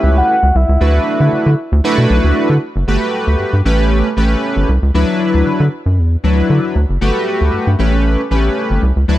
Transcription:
0.00 0.22 C#2 medium
0.00 0.34 A3 medium
0.00 0.35 C#4 medium
0.00 0.35 E4 medium
0.00 0.35 G4 medium
0.00 0.35 B4 medium
0.00 0.17 E5 loud
0.18 0.58 F#5 loud
0.43 0.52 C#2 medium
0.55 0.65 C2 loud
0.55 2.11 E5 loud
0.69 0.77 C#2 medium
0.81 0.99 D2 loud
0.81 1.50 A3 medium
0.81 1.50 D4 medium
0.81 1.50 E4 medium
0.81 1.50 F#4 medium
0.81 1.50 B4 medium
1.20 1.29 D3 medium
1.33 1.38 D3 soft
1.46 1.55 D3 medium
1.72 1.81 D2 loud
1.84 2.53 A3 loud
1.84 2.53 D4 loud
1.84 2.54 E4 loud
1.84 2.54 F#4 loud
1.84 2.54 B4 loud
1.98 2.07 B2 medium
2.10 2.20 B1 loud
2.24 2.33 D2 medium
2.50 2.58 D3 loud
2.76 2.84 F#1 loud
2.88 2.98 G1 medium
2.88 3.57 A3 medium
2.88 3.57 F#4 medium
2.88 3.57 G4 medium
2.88 3.57 B4 loud
3.27 3.36 D2 medium
3.40 3.45 G2 soft
3.53 3.62 G2 medium
3.65 4.02 A1 loud
3.65 4.07 A3 medium
3.65 4.07 C#4 medium
3.65 4.08 G4 medium
3.65 4.08 B4 loud
4.17 4.35 A1 medium
4.17 4.68 A3 medium
4.17 4.69 C#4 medium
4.17 4.69 G4 medium
4.17 4.69 B4 loud
4.56 4.65 G1 medium
4.69 4.79 C2 loud
4.82 4.91 C#2 medium
4.94 5.04 D2 medium
4.94 5.64 F#3 medium
4.94 5.64 D4 medium
4.94 5.64 E4 medium
4.94 5.64 B4 loud
5.34 5.43 D2 medium
5.46 5.52 D3 soft
5.60 5.69 D3 medium
5.86 6.00 F#2 medium
5.98 6.17 E2 medium
6.24 6.42 D2 medium
6.24 6.75 F#3 medium
6.24 6.75 D4 medium
6.24 6.76 E4 medium
6.24 6.76 B4 medium
6.50 6.60 D3 medium
6.76 6.85 D2 medium
6.89 6.98 F#1 medium
7.01 7.11 G1 medium
7.01 7.71 A3 medium
7.01 7.71 F#4 medium
7.01 7.71 G4 loud
7.01 7.71 B4 loud
7.41 7.50 D2 medium
7.53 7.59 G2 medium
7.67 7.76 G2 medium
7.79 8.16 A1 loud
7.79 8.21 A3 medium
7.79 8.21 C#4 medium
7.79 8.21 G4 medium
7.79 8.21 B4 loud
8.31 8.49 A1 medium
8.31 8.82 A3 medium
8.31 8.82 C#4 medium
8.31 8.83 G4 medium
8.31 8.83 B4 loud
8.71 8.79 G1 medium
8.83 8.92 C2 loud
8.96 9.05 C#2 medium
9.08 9.18 D2 loud
9.08 9.18 F#3 medium
9.08 9.18 D4 loud
9.08 9.18 E4 medium
9.08 9.18 B4 loud

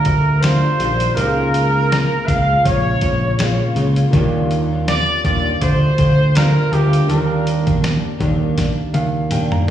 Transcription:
0.00 0.42 G3 medium
0.00 1.12 A#3 medium
0.00 0.43 D4 medium
0.00 1.13 D4 medium
0.00 0.45 F4 medium
0.00 1.14 F4 medium
0.00 1.14 G4 medium
0.00 0.43 A#4 loud
0.05 0.65 D2 medium
0.05 kick medium
0.05 closed hi-hat medium
0.41 0.79 G3 medium
0.41 0.80 D4 medium
0.41 1.16 C5 medium
0.41 snare loud
0.41 closed hi-hat loud
0.46 0.81 F4 medium
0.79 1.09 A#1 medium
0.79 1.16 D#3 medium
0.79 1.17 G3 medium
0.79 1.18 D4 medium
0.79 1.18 F4 medium
0.79 closed hi-hat medium
1.00 closed hi-hat medium
1.14 2.07 C#2 loud
1.14 1.74 C#3 medium
1.14 1.74 G#3 medium
1.14 4.08 A#3 medium
1.14 1.75 A#3 medium
1.14 4.09 D#4 medium
1.14 4.10 F4 medium
1.14 2.28 A#4 loud
1.14 closed hi-hat medium
1.19 1.73 F4 medium
1.19 1.25 G4 medium
1.26 4.14 G#4 medium
1.54 closed hi-hat medium
1.74 2.28 G#3 soft
1.74 2.28 A#3 soft
1.74 2.28 F4 medium
1.92 snare medium
1.92 closed hi-hat medium
2.26 2.58 C#2 medium
2.26 3.37 C#3 medium
2.26 3.38 G#3 medium
2.26 3.40 A#3 medium
2.26 2.64 F5 loud
2.26 kick medium
2.26 closed hi-hat medium
2.31 3.41 F4 medium
2.65 2.95 A#1 medium
2.65 3.72 C#5 loud
2.65 kick loud
2.65 closed hi-hat medium
3.01 3.61 A#1 medium
3.01 kick medium
3.01 closed hi-hat medium
3.38 3.74 C#3 medium
3.38 3.75 G#3 medium
3.38 3.76 A#3 medium
3.38 3.77 F4 medium
3.38 snare loud
3.38 closed hi-hat medium
3.75 4.06 C#2 medium
3.75 4.12 C#3 medium
3.75 4.13 G#3 medium
3.75 4.14 A#3 medium
3.75 4.14 F4 medium
3.75 closed hi-hat medium
3.96 closed hi-hat medium
4.11 5.04 D#2 loud
4.11 4.70 D#3 medium
4.11 4.71 G3 medium
4.11 7.04 A#3 medium
4.11 7.05 D4 medium
4.11 4.70 D4 medium
4.11 7.06 F4 medium
4.11 kick loud
4.11 closed hi-hat medium
4.15 4.68 F4 loud
4.15 7.07 G4 medium
4.51 closed hi-hat medium
4.69 5.25 D4 medium
4.69 5.24 F4 medium
4.73 5.24 G3 medium
4.88 5.23 D5 loud
4.88 snare loud
4.88 closed hi-hat medium
5.25 5.54 D#2 loud
5.25 6.35 G3 medium
5.25 6.37 D4 medium
5.25 6.37 F4 medium
5.25 5.63 D5 loud
5.25 kick medium
5.25 closed hi-hat medium
5.62 5.91 D2 medium
5.62 6.38 C5 loud
5.62 kick loud
5.62 closed hi-hat medium
5.98 6.58 D2 medium
5.98 kick medium
5.98 closed hi-hat medium
6.35 6.72 G3 medium
6.35 6.73 D4 medium
6.35 6.74 F4 medium
6.35 6.74 A#4 loud
6.35 snare loud
6.35 closed hi-hat medium
6.72 7.02 D2 medium
6.72 7.08 G3 medium
6.72 7.10 D4 medium
6.72 7.11 F4 medium
6.72 7.10 G4 medium
6.72 closed hi-hat medium
6.93 closed hi-hat medium
7.07 8.00 D#2 loud
7.07 7.66 D#3 medium
7.07 7.67 G3 medium
7.07 9.63 A#3 medium
7.07 7.66 A#3 medium
7.07 9.64 D4 medium
7.07 9.65 F4 medium
7.07 7.80 A#4 medium
7.07 closed hi-hat medium
7.11 7.65 D4 medium
7.11 9.66 G4 medium
7.47 closed hi-hat medium
7.66 8.19 G3 soft
7.66 8.20 A#3 soft
7.66 8.20 D4 medium
7.66 kick loud
7.66 closed hi-hat medium
7.84 snare loud
7.84 closed hi-hat medium
8.19 8.66 D#2 loud
8.19 9.30 D#3 medium
8.19 9.31 G3 medium
8.19 9.32 A#3 medium
8.19 9.33 D4 medium
8.19 kick medium
8.19 closed hi-hat medium
8.58 kick loud
8.58 snare medium
8.58 closed hi-hat loud
8.94 9.54 D#2 loud
8.94 9.28 F5 medium
8.94 closed hi-hat medium
8.94 high tom medium
9.30 9.68 D#3 medium
9.30 9.67 G3 medium
9.30 9.68 A#3 medium
9.30 9.51 G5 medium
9.30 closed hi-hat medium
9.30 mid tom medium
9.34 9.70 D4 medium
9.51 9.71 A#5 medium
9.51 mid tom medium
9.67 9.71 A#3 medium

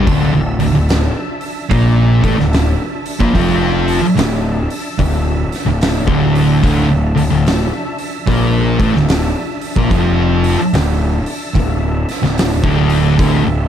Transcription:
0.06 0.31 D1 medium
0.06 0.32 D2 medium
0.06 0.32 D3 loud
0.06 13.68 D4 medium
0.06 13.68 E5 medium
0.06 13.68 A5 medium
0.06 kick loud
0.06 open hi-hat medium
0.33 0.58 D1 medium
0.33 0.59 D2 medium
0.60 0.73 D1 medium
0.60 0.74 D2 medium
0.60 open hi-hat medium
0.74 1.12 D1 medium
0.74 1.05 D2 medium
0.89 snare loud
0.89 open hi-hat medium
1.41 open hi-hat medium
1.71 2.20 A#1 medium
1.71 2.22 A#2 loud
1.71 2.22 A#3 loud
1.71 kick loud
1.71 open hi-hat medium
2.24 2.37 A1 medium
2.24 2.37 A2 medium
2.24 2.38 A3 loud
2.24 kick loud
2.24 open hi-hat medium
2.38 2.77 D1 medium
2.38 2.69 D2 medium
2.38 snare soft
2.53 snare loud
2.53 open hi-hat medium
3.06 open hi-hat medium
3.20 3.34 A#1 medium
3.20 3.34 A#2 medium
3.20 3.34 A#3 loud
3.20 kick loud
3.35 3.98 F1 medium
3.35 4.01 F2 medium
3.35 4.02 F3 loud
3.35 kick loud
3.35 open hi-hat medium
3.88 open hi-hat medium
4.02 muted distorted electric guitar stroke medium
4.02 muted picked electric bass stroke soft
4.16 4.67 D1 medium
4.16 4.59 D2 medium
4.16 snare loud
4.16 open hi-hat medium
4.70 open hi-hat medium
4.99 5.48 D1 medium
4.99 5.41 D2 medium
4.99 kick medium
4.99 open hi-hat medium
5.52 snare soft
5.52 open hi-hat medium
5.66 6.05 D1 medium
5.66 5.97 D2 medium
5.81 snare loud
5.81 open hi-hat medium
6.07 6.60 D1 loud
6.07 6.62 D2 medium
6.07 6.62 D3 loud
6.07 kick loud
6.35 open hi-hat medium
6.63 6.88 D1 medium
6.63 6.88 D2 loud
6.63 6.88 D3 loud
6.63 kick loud
6.63 open hi-hat medium
6.89 7.14 D1 medium
6.89 7.14 D2 medium
7.15 7.29 D1 medium
7.15 7.30 D2 medium
7.15 open hi-hat medium
7.31 7.69 D1 medium
7.31 7.61 D2 medium
7.46 snare loud
7.46 open hi-hat medium
7.98 open hi-hat medium
8.27 8.76 A#1 medium
8.27 8.79 A#2 medium
8.27 8.79 A#3 loud
8.27 kick loud
8.27 open hi-hat medium
8.80 8.93 A1 medium
8.80 8.94 A2 loud
8.80 8.94 A3 loud
8.80 kick loud
8.80 open hi-hat medium
8.94 9.32 D1 medium
8.94 9.26 D2 medium
8.94 snare soft
9.09 snare loud
9.09 open hi-hat medium
9.61 open hi-hat medium
9.76 9.90 A#1 loud
9.76 9.91 A#2 medium
9.76 9.91 A#3 medium
9.76 kick loud
9.91 10.55 F1 medium
9.91 10.58 F2 medium
9.91 10.58 F3 loud
9.91 kick loud
9.91 open hi-hat medium
10.44 open hi-hat medium
10.58 muted picked electric bass stroke soft
10.58 muted distorted electric guitar stroke medium
10.73 11.22 D1 medium
10.73 11.16 D2 medium
10.73 snare loud
10.73 open hi-hat medium
11.26 open hi-hat medium
11.55 12.04 D1 medium
11.55 11.98 D2 medium
11.55 kick medium
11.55 open hi-hat medium
12.09 snare soft
12.09 open hi-hat medium
12.23 12.61 D1 medium
12.23 12.53 D2 medium
12.23 snare soft
12.38 snare loud
12.38 open hi-hat medium
12.63 13.16 D1 loud
12.63 13.17 D2 medium
12.63 13.18 D3 loud
12.63 kick loud
12.90 open hi-hat medium
13.18 13.44 D1 medium
13.18 13.44 D2 loud
13.18 13.44 D3 loud
13.18 kick loud
13.18 open hi-hat medium
13.45 13.68 D1 medium
13.45 13.68 D2 medium

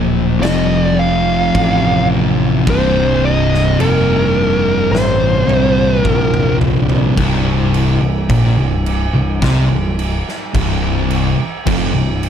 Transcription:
0.00 0.38 D1 medium
0.00 0.38 A#2 medium
0.00 0.39 F3 loud
0.00 0.40 A#3 loud
0.40 1.50 F1 medium
0.40 2.63 F2 loud
0.40 2.64 C3 loud
0.40 2.64 F3 loud
0.40 0.84 D#5 loud
0.40 crash medium
0.45 snare loud
0.84 1.00 D5 loud
0.99 2.07 F5 loud
1.55 2.63 A1 medium
1.55 kick medium
1.55 crash medium
2.66 3.75 C1 loud
2.66 5.44 C2 loud
2.66 5.45 G2 medium
2.66 5.45 C3 medium
2.66 3.25 C5 loud
2.66 kick loud
2.66 crash medium
3.25 3.77 D#5 loud
3.54 snare soft
3.78 4.87 F1 medium
3.78 4.96 A#4 medium
3.78 crash medium
4.91 5.44 A1 medium
4.91 6.01 C5 medium
4.91 snare medium
5.47 6.00 C2 medium
5.47 6.01 C2 medium
5.47 6.01 G2 medium
5.47 6.00 C3 medium
5.47 high tom medium
6.01 7.13 A#1 medium
6.01 7.13 C2 medium
6.01 7.13 G2 medium
6.01 6.56 A#4 medium
6.05 7.14 C3 medium
6.05 kick medium
6.05 mid tom medium
6.34 mid tom medium
6.61 floor tom loud
6.89 floor tom loud
7.17 7.97 C1 loud
7.17 7.99 C2 loud
7.17 kick loud
7.17 crash medium
7.74 crash medium
8.01 8.27 C1 medium
8.01 8.29 C2 medium
8.29 8.55 A#1 medium
8.29 8.56 A#2 loud
8.29 kick loud
8.29 crash medium
8.57 9.09 C1 medium
8.57 9.02 C2 medium
8.86 crash medium
9.13 9.39 C1 medium
9.13 9.42 C2 medium
9.42 9.68 C2 loud
9.42 9.68 C3 loud
9.42 kick loud
9.42 snare loud
9.42 crash medium
9.69 10.22 C1 medium
9.69 10.14 C2 medium
9.99 crash medium
10.28 snare soft
10.54 11.34 C1 medium
10.54 11.37 C2 medium
10.54 kick loud
10.54 crash medium
11.10 crash medium
11.38 muted picked electric bass stroke soft
11.38 muted distorted electric guitar stroke medium
11.66 11.93 F1 loud
11.66 11.93 F2 loud
11.66 kick loud
11.66 crash medium
11.93 12.29 C1 medium
11.93 12.29 C2 medium
12.23 crash medium

